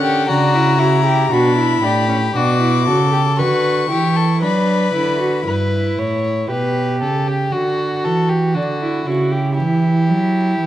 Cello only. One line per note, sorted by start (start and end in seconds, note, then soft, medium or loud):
0.00 0.29 D3 medium
0.28 1.31 C#3 medium
1.31 1.82 B2 medium
1.83 2.34 A2 medium
2.35 2.88 B2 medium
2.87 3.41 C#3 medium
3.39 3.90 D3 medium
3.91 4.42 E3 medium
4.42 4.93 F#3 medium
4.94 5.46 D3 medium
5.46 5.95 G2 medium
5.98 6.49 A2 medium
6.50 7.02 B2 medium
7.01 7.52 C#3 medium
7.53 8.06 D3 medium
8.04 8.57 E3 medium
8.55 9.06 D3 medium
9.07 9.59 C#3 medium
9.58 10.11 E3 medium
10.09 10.60 F#3 medium
10.60 10.66 E3 medium